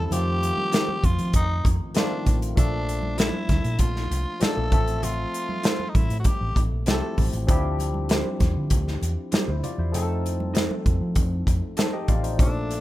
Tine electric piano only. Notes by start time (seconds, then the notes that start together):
Already playing: D3 F3 G3 C4 E4
0.10 D#3 F3 A3 C4 F4
1.94 D#3 F3 A3 C4 F4
2.55 F3 A3 A#3 D4 A4
4.40 F3 A3 A#3 D4 A4
4.71 F3 A3 C4 A4 E5
6.86 F3 A3 C4 E4 G4
7.47 F3 C4 D4 E4 G4
9.49 E4 C5
9.64 F4 D5
9.79 E4 C5
9.92 F3 A3 C4 D#4 G#4
10.02 A4
11.78 D#4 C5 A5
11.93 G4 D#5 G5
12.09 F4 D5 F5
12.23 D#4 C5
12.37 F3 A3 A#3 D4 G4
12.47 A4